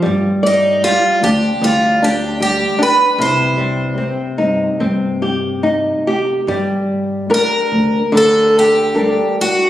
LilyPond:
<<
  \new Staff \with { instrumentName = "Twelve-string acoustic guitar" } { \time 4/4 \key c \minor \tempo 4 = 74 r8 ees'8 f'8 g'8 f'8 g'8 g'8 b'8 | c''2. r4 | \key g \minor r4 bes'4 a'8 g'4 fis'8 | }
  \new Staff \with { instrumentName = "Nylon-string guitar" } { \time 4/4 \key c \minor g8 d''8 g8 d'8 g8 d'8 g8 d'8 | c8 g8 c'8 ees'8 c'8 g'8 ees'8 g'8 | \key g \minor g4 <d' g' bes'>4 d4 <g d' bes'>4 | }
  \new Staff \with { instrumentName = "Upright bass" } { \clef bass \time 4/4 \key c \minor g,4. d,8 d,2 | c,4. g,8 g,2 | \key g \minor g,4. d,8 d,2 | }
>>